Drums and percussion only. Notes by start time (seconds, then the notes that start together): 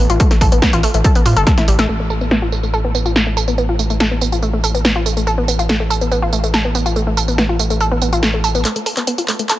0.10 closed hi-hat
0.20 kick, closed hi-hat
0.31 snare, closed hi-hat
0.41 kick, open hi-hat
0.52 closed hi-hat
0.62 kick, snare, closed hi-hat
0.73 closed hi-hat
0.83 open hi-hat
0.94 closed hi-hat
1.04 kick, closed hi-hat
1.15 closed hi-hat
1.26 open hi-hat
1.37 closed hi-hat
1.47 kick, snare, closed hi-hat
1.58 snare, closed hi-hat
1.68 open hi-hat
1.79 snare, closed hi-hat
1.89 tambourine
2.10 tambourine
2.21 tambourine
2.31 snare, tambourine
2.52 tambourine
2.63 tambourine
2.74 tambourine
2.95 tambourine
3.06 tambourine
3.16 snare, tambourine
3.37 tambourine
3.48 tambourine
3.58 tambourine
3.79 tambourine
3.90 tambourine
4.00 snare, tambourine
4.21 tambourine
4.32 tambourine
4.43 tambourine
4.64 tambourine
4.75 tambourine
4.85 snare, tambourine
5.06 tambourine
5.17 tambourine
5.27 tambourine
5.48 tambourine
5.59 tambourine
5.69 snare, tambourine
5.90 tambourine
6.01 tambourine
6.12 tambourine
6.33 tambourine
6.44 tambourine
6.54 snare, tambourine
6.75 tambourine
6.86 tambourine
6.96 tambourine
7.17 tambourine
7.28 tambourine
7.38 snare, tambourine
7.59 tambourine
7.70 tambourine
7.80 tambourine
8.02 tambourine
8.13 tambourine
8.23 snare, tambourine
8.44 tambourine
8.55 tambourine
8.65 clap, closed hi-hat
8.76 closed hi-hat
8.86 open hi-hat
8.97 clap, closed hi-hat
9.07 closed hi-hat
9.18 closed hi-hat
9.28 clap, open hi-hat
9.39 closed hi-hat
9.50 clap, closed hi-hat